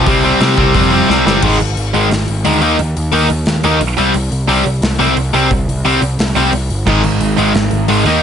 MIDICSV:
0, 0, Header, 1, 4, 480
1, 0, Start_track
1, 0, Key_signature, -3, "minor"
1, 0, Tempo, 339943
1, 97, Time_signature, 4, 2, 24, 8
1, 11617, End_track
2, 0, Start_track
2, 0, Title_t, "Distorted electric guitar"
2, 0, Program_c, 0, 30
2, 97, Note_on_c, 0, 48, 103
2, 105, Note_on_c, 0, 55, 93
2, 118, Note_on_c, 0, 60, 96
2, 327, Note_off_c, 0, 60, 0
2, 333, Note_off_c, 0, 55, 0
2, 344, Note_off_c, 0, 48, 0
2, 344, Note_on_c, 0, 60, 90
2, 349, Note_on_c, 0, 55, 82
2, 361, Note_on_c, 0, 48, 71
2, 551, Note_off_c, 0, 48, 0
2, 558, Note_off_c, 0, 55, 0
2, 563, Note_off_c, 0, 60, 0
2, 568, Note_on_c, 0, 48, 103
2, 575, Note_on_c, 0, 55, 112
2, 580, Note_on_c, 0, 60, 119
2, 797, Note_off_c, 0, 60, 0
2, 810, Note_off_c, 0, 55, 0
2, 814, Note_on_c, 0, 60, 113
2, 821, Note_off_c, 0, 48, 0
2, 827, Note_on_c, 0, 55, 89
2, 838, Note_on_c, 0, 48, 79
2, 1042, Note_off_c, 0, 48, 0
2, 1045, Note_off_c, 0, 55, 0
2, 1050, Note_off_c, 0, 60, 0
2, 1059, Note_on_c, 0, 48, 91
2, 1062, Note_on_c, 0, 55, 91
2, 1066, Note_on_c, 0, 60, 109
2, 1289, Note_off_c, 0, 60, 0
2, 1291, Note_off_c, 0, 55, 0
2, 1303, Note_off_c, 0, 48, 0
2, 1306, Note_on_c, 0, 60, 103
2, 1308, Note_on_c, 0, 55, 91
2, 1320, Note_on_c, 0, 48, 88
2, 1530, Note_off_c, 0, 48, 0
2, 1533, Note_off_c, 0, 55, 0
2, 1533, Note_off_c, 0, 60, 0
2, 1547, Note_on_c, 0, 48, 96
2, 1550, Note_on_c, 0, 55, 104
2, 1550, Note_on_c, 0, 60, 119
2, 1764, Note_off_c, 0, 60, 0
2, 1766, Note_off_c, 0, 55, 0
2, 1772, Note_off_c, 0, 48, 0
2, 1781, Note_on_c, 0, 60, 101
2, 1783, Note_on_c, 0, 55, 98
2, 1789, Note_on_c, 0, 48, 89
2, 2006, Note_off_c, 0, 60, 0
2, 2007, Note_off_c, 0, 55, 0
2, 2010, Note_off_c, 0, 48, 0
2, 2018, Note_on_c, 0, 44, 78
2, 2029, Note_on_c, 0, 51, 84
2, 2029, Note_on_c, 0, 56, 89
2, 2212, Note_off_c, 0, 44, 0
2, 2217, Note_off_c, 0, 51, 0
2, 2217, Note_off_c, 0, 56, 0
2, 2738, Note_on_c, 0, 44, 89
2, 2745, Note_on_c, 0, 51, 96
2, 2745, Note_on_c, 0, 56, 99
2, 2932, Note_off_c, 0, 44, 0
2, 2936, Note_off_c, 0, 51, 0
2, 2936, Note_off_c, 0, 56, 0
2, 3453, Note_on_c, 0, 44, 96
2, 3467, Note_on_c, 0, 51, 94
2, 3467, Note_on_c, 0, 56, 95
2, 3651, Note_off_c, 0, 44, 0
2, 3657, Note_off_c, 0, 56, 0
2, 3658, Note_off_c, 0, 51, 0
2, 3691, Note_on_c, 0, 51, 97
2, 3698, Note_on_c, 0, 58, 101
2, 3700, Note_on_c, 0, 63, 108
2, 3889, Note_off_c, 0, 51, 0
2, 3893, Note_off_c, 0, 58, 0
2, 3894, Note_off_c, 0, 63, 0
2, 4402, Note_on_c, 0, 51, 100
2, 4415, Note_on_c, 0, 58, 99
2, 4417, Note_on_c, 0, 63, 101
2, 4606, Note_off_c, 0, 51, 0
2, 4612, Note_off_c, 0, 58, 0
2, 4613, Note_off_c, 0, 63, 0
2, 5144, Note_on_c, 0, 51, 90
2, 5150, Note_on_c, 0, 58, 100
2, 5159, Note_on_c, 0, 63, 113
2, 5337, Note_off_c, 0, 51, 0
2, 5340, Note_off_c, 0, 58, 0
2, 5344, Note_off_c, 0, 63, 0
2, 5619, Note_on_c, 0, 48, 95
2, 5621, Note_on_c, 0, 60, 95
2, 5629, Note_on_c, 0, 55, 102
2, 5815, Note_off_c, 0, 48, 0
2, 5816, Note_off_c, 0, 60, 0
2, 5820, Note_off_c, 0, 55, 0
2, 6322, Note_on_c, 0, 48, 93
2, 6335, Note_on_c, 0, 55, 105
2, 6336, Note_on_c, 0, 60, 98
2, 6526, Note_off_c, 0, 48, 0
2, 6533, Note_off_c, 0, 55, 0
2, 6533, Note_off_c, 0, 60, 0
2, 7044, Note_on_c, 0, 48, 105
2, 7046, Note_on_c, 0, 55, 97
2, 7051, Note_on_c, 0, 60, 106
2, 7247, Note_off_c, 0, 48, 0
2, 7248, Note_off_c, 0, 55, 0
2, 7250, Note_off_c, 0, 60, 0
2, 7529, Note_on_c, 0, 48, 99
2, 7533, Note_on_c, 0, 55, 92
2, 7545, Note_on_c, 0, 60, 108
2, 7729, Note_off_c, 0, 48, 0
2, 7732, Note_off_c, 0, 55, 0
2, 7737, Note_off_c, 0, 60, 0
2, 8260, Note_on_c, 0, 48, 92
2, 8268, Note_on_c, 0, 55, 100
2, 8278, Note_on_c, 0, 60, 102
2, 8454, Note_off_c, 0, 48, 0
2, 8458, Note_off_c, 0, 55, 0
2, 8463, Note_off_c, 0, 60, 0
2, 8987, Note_on_c, 0, 48, 93
2, 8995, Note_on_c, 0, 55, 95
2, 9002, Note_on_c, 0, 60, 108
2, 9177, Note_off_c, 0, 48, 0
2, 9182, Note_off_c, 0, 55, 0
2, 9185, Note_off_c, 0, 60, 0
2, 9714, Note_on_c, 0, 44, 101
2, 9726, Note_on_c, 0, 51, 100
2, 9728, Note_on_c, 0, 56, 97
2, 9900, Note_off_c, 0, 44, 0
2, 9906, Note_off_c, 0, 51, 0
2, 9907, Note_off_c, 0, 56, 0
2, 10421, Note_on_c, 0, 44, 92
2, 10431, Note_on_c, 0, 56, 102
2, 10434, Note_on_c, 0, 51, 95
2, 10613, Note_off_c, 0, 44, 0
2, 10618, Note_off_c, 0, 56, 0
2, 10619, Note_off_c, 0, 51, 0
2, 11131, Note_on_c, 0, 44, 104
2, 11143, Note_on_c, 0, 51, 92
2, 11145, Note_on_c, 0, 56, 109
2, 11327, Note_off_c, 0, 44, 0
2, 11333, Note_off_c, 0, 51, 0
2, 11334, Note_off_c, 0, 56, 0
2, 11375, Note_on_c, 0, 51, 106
2, 11391, Note_on_c, 0, 63, 105
2, 11392, Note_on_c, 0, 58, 100
2, 11569, Note_off_c, 0, 51, 0
2, 11577, Note_off_c, 0, 58, 0
2, 11577, Note_off_c, 0, 63, 0
2, 11617, End_track
3, 0, Start_track
3, 0, Title_t, "Picked electric bass"
3, 0, Program_c, 1, 34
3, 92, Note_on_c, 1, 36, 107
3, 472, Note_off_c, 1, 36, 0
3, 576, Note_on_c, 1, 48, 92
3, 766, Note_off_c, 1, 48, 0
3, 810, Note_on_c, 1, 36, 106
3, 1002, Note_off_c, 1, 36, 0
3, 1051, Note_on_c, 1, 41, 91
3, 1432, Note_off_c, 1, 41, 0
3, 1543, Note_on_c, 1, 36, 91
3, 1731, Note_off_c, 1, 36, 0
3, 1780, Note_on_c, 1, 31, 85
3, 1969, Note_off_c, 1, 31, 0
3, 2012, Note_on_c, 1, 32, 85
3, 2240, Note_off_c, 1, 32, 0
3, 2257, Note_on_c, 1, 32, 77
3, 2483, Note_off_c, 1, 32, 0
3, 2490, Note_on_c, 1, 32, 78
3, 2720, Note_off_c, 1, 32, 0
3, 2743, Note_on_c, 1, 32, 87
3, 2967, Note_off_c, 1, 32, 0
3, 2989, Note_on_c, 1, 32, 78
3, 3211, Note_off_c, 1, 32, 0
3, 3223, Note_on_c, 1, 32, 77
3, 3447, Note_off_c, 1, 32, 0
3, 3461, Note_on_c, 1, 38, 72
3, 3701, Note_off_c, 1, 38, 0
3, 3701, Note_on_c, 1, 39, 79
3, 3927, Note_off_c, 1, 39, 0
3, 3937, Note_on_c, 1, 39, 97
3, 4165, Note_off_c, 1, 39, 0
3, 4189, Note_on_c, 1, 39, 83
3, 4411, Note_off_c, 1, 39, 0
3, 4418, Note_on_c, 1, 39, 82
3, 4646, Note_off_c, 1, 39, 0
3, 4661, Note_on_c, 1, 39, 93
3, 4888, Note_off_c, 1, 39, 0
3, 4904, Note_on_c, 1, 39, 85
3, 5129, Note_off_c, 1, 39, 0
3, 5139, Note_on_c, 1, 39, 88
3, 5366, Note_off_c, 1, 39, 0
3, 5376, Note_on_c, 1, 35, 78
3, 5605, Note_off_c, 1, 35, 0
3, 5618, Note_on_c, 1, 36, 92
3, 5841, Note_off_c, 1, 36, 0
3, 5850, Note_on_c, 1, 36, 96
3, 6082, Note_off_c, 1, 36, 0
3, 6091, Note_on_c, 1, 36, 92
3, 6317, Note_off_c, 1, 36, 0
3, 6326, Note_on_c, 1, 36, 89
3, 6560, Note_off_c, 1, 36, 0
3, 6573, Note_on_c, 1, 36, 96
3, 6799, Note_off_c, 1, 36, 0
3, 6808, Note_on_c, 1, 36, 92
3, 7041, Note_off_c, 1, 36, 0
3, 7048, Note_on_c, 1, 36, 82
3, 7280, Note_off_c, 1, 36, 0
3, 7286, Note_on_c, 1, 36, 82
3, 7520, Note_off_c, 1, 36, 0
3, 7529, Note_on_c, 1, 36, 81
3, 7761, Note_off_c, 1, 36, 0
3, 7780, Note_on_c, 1, 36, 100
3, 8001, Note_off_c, 1, 36, 0
3, 8010, Note_on_c, 1, 36, 81
3, 8241, Note_off_c, 1, 36, 0
3, 8262, Note_on_c, 1, 36, 76
3, 8482, Note_off_c, 1, 36, 0
3, 8490, Note_on_c, 1, 36, 83
3, 8721, Note_off_c, 1, 36, 0
3, 8736, Note_on_c, 1, 36, 93
3, 8964, Note_off_c, 1, 36, 0
3, 8972, Note_on_c, 1, 36, 86
3, 9201, Note_off_c, 1, 36, 0
3, 9213, Note_on_c, 1, 36, 84
3, 9442, Note_off_c, 1, 36, 0
3, 9455, Note_on_c, 1, 31, 81
3, 9683, Note_off_c, 1, 31, 0
3, 9697, Note_on_c, 1, 32, 92
3, 9924, Note_off_c, 1, 32, 0
3, 9942, Note_on_c, 1, 32, 85
3, 10166, Note_off_c, 1, 32, 0
3, 10180, Note_on_c, 1, 32, 84
3, 10405, Note_off_c, 1, 32, 0
3, 10413, Note_on_c, 1, 32, 83
3, 10641, Note_off_c, 1, 32, 0
3, 10649, Note_on_c, 1, 32, 83
3, 10878, Note_off_c, 1, 32, 0
3, 10892, Note_on_c, 1, 32, 85
3, 11120, Note_off_c, 1, 32, 0
3, 11126, Note_on_c, 1, 32, 75
3, 11349, Note_off_c, 1, 32, 0
3, 11358, Note_on_c, 1, 39, 79
3, 11592, Note_off_c, 1, 39, 0
3, 11617, End_track
4, 0, Start_track
4, 0, Title_t, "Drums"
4, 89, Note_on_c, 9, 46, 66
4, 93, Note_on_c, 9, 36, 106
4, 230, Note_off_c, 9, 46, 0
4, 234, Note_off_c, 9, 36, 0
4, 571, Note_on_c, 9, 46, 61
4, 588, Note_on_c, 9, 38, 113
4, 712, Note_off_c, 9, 46, 0
4, 729, Note_off_c, 9, 38, 0
4, 813, Note_on_c, 9, 36, 89
4, 954, Note_off_c, 9, 36, 0
4, 1049, Note_on_c, 9, 46, 68
4, 1053, Note_on_c, 9, 36, 100
4, 1190, Note_off_c, 9, 46, 0
4, 1194, Note_off_c, 9, 36, 0
4, 1553, Note_on_c, 9, 38, 62
4, 1694, Note_off_c, 9, 38, 0
4, 1794, Note_on_c, 9, 38, 90
4, 1935, Note_off_c, 9, 38, 0
4, 2009, Note_on_c, 9, 49, 114
4, 2013, Note_on_c, 9, 36, 96
4, 2150, Note_off_c, 9, 49, 0
4, 2154, Note_off_c, 9, 36, 0
4, 2259, Note_on_c, 9, 46, 59
4, 2400, Note_off_c, 9, 46, 0
4, 2501, Note_on_c, 9, 46, 62
4, 2642, Note_off_c, 9, 46, 0
4, 2742, Note_on_c, 9, 46, 54
4, 2883, Note_off_c, 9, 46, 0
4, 2982, Note_on_c, 9, 46, 74
4, 2999, Note_on_c, 9, 38, 108
4, 3123, Note_off_c, 9, 46, 0
4, 3140, Note_off_c, 9, 38, 0
4, 3216, Note_on_c, 9, 46, 54
4, 3357, Note_off_c, 9, 46, 0
4, 3455, Note_on_c, 9, 46, 85
4, 3597, Note_off_c, 9, 46, 0
4, 3694, Note_on_c, 9, 46, 55
4, 3835, Note_off_c, 9, 46, 0
4, 3941, Note_on_c, 9, 46, 78
4, 4082, Note_off_c, 9, 46, 0
4, 4189, Note_on_c, 9, 46, 63
4, 4330, Note_off_c, 9, 46, 0
4, 4410, Note_on_c, 9, 46, 78
4, 4551, Note_off_c, 9, 46, 0
4, 4659, Note_on_c, 9, 46, 56
4, 4800, Note_off_c, 9, 46, 0
4, 4881, Note_on_c, 9, 46, 70
4, 4898, Note_on_c, 9, 38, 93
4, 5022, Note_off_c, 9, 46, 0
4, 5039, Note_off_c, 9, 38, 0
4, 5131, Note_on_c, 9, 46, 57
4, 5272, Note_off_c, 9, 46, 0
4, 5377, Note_on_c, 9, 46, 81
4, 5518, Note_off_c, 9, 46, 0
4, 5615, Note_on_c, 9, 46, 54
4, 5756, Note_off_c, 9, 46, 0
4, 5849, Note_on_c, 9, 46, 76
4, 5990, Note_off_c, 9, 46, 0
4, 6095, Note_on_c, 9, 46, 58
4, 6237, Note_off_c, 9, 46, 0
4, 6338, Note_on_c, 9, 46, 76
4, 6480, Note_off_c, 9, 46, 0
4, 6573, Note_on_c, 9, 46, 49
4, 6715, Note_off_c, 9, 46, 0
4, 6809, Note_on_c, 9, 46, 70
4, 6826, Note_on_c, 9, 38, 109
4, 6950, Note_off_c, 9, 46, 0
4, 6967, Note_off_c, 9, 38, 0
4, 7062, Note_on_c, 9, 46, 52
4, 7203, Note_off_c, 9, 46, 0
4, 7298, Note_on_c, 9, 46, 72
4, 7439, Note_off_c, 9, 46, 0
4, 7543, Note_on_c, 9, 46, 57
4, 7684, Note_off_c, 9, 46, 0
4, 7779, Note_on_c, 9, 36, 98
4, 7782, Note_on_c, 9, 46, 67
4, 7920, Note_off_c, 9, 36, 0
4, 7923, Note_off_c, 9, 46, 0
4, 8034, Note_on_c, 9, 46, 61
4, 8175, Note_off_c, 9, 46, 0
4, 8273, Note_on_c, 9, 46, 75
4, 8414, Note_off_c, 9, 46, 0
4, 8500, Note_on_c, 9, 46, 65
4, 8641, Note_off_c, 9, 46, 0
4, 8741, Note_on_c, 9, 46, 83
4, 8758, Note_on_c, 9, 38, 109
4, 8882, Note_off_c, 9, 46, 0
4, 8899, Note_off_c, 9, 38, 0
4, 8980, Note_on_c, 9, 46, 59
4, 9122, Note_off_c, 9, 46, 0
4, 9217, Note_on_c, 9, 46, 77
4, 9358, Note_off_c, 9, 46, 0
4, 9462, Note_on_c, 9, 46, 52
4, 9603, Note_off_c, 9, 46, 0
4, 9697, Note_on_c, 9, 36, 98
4, 9704, Note_on_c, 9, 57, 84
4, 9838, Note_off_c, 9, 36, 0
4, 9845, Note_off_c, 9, 57, 0
4, 9936, Note_on_c, 9, 46, 60
4, 10077, Note_off_c, 9, 46, 0
4, 10174, Note_on_c, 9, 46, 69
4, 10316, Note_off_c, 9, 46, 0
4, 10412, Note_on_c, 9, 46, 57
4, 10553, Note_off_c, 9, 46, 0
4, 10652, Note_on_c, 9, 46, 63
4, 10669, Note_on_c, 9, 38, 111
4, 10793, Note_off_c, 9, 46, 0
4, 10810, Note_off_c, 9, 38, 0
4, 10885, Note_on_c, 9, 46, 50
4, 11026, Note_off_c, 9, 46, 0
4, 11130, Note_on_c, 9, 46, 77
4, 11271, Note_off_c, 9, 46, 0
4, 11373, Note_on_c, 9, 46, 54
4, 11514, Note_off_c, 9, 46, 0
4, 11617, End_track
0, 0, End_of_file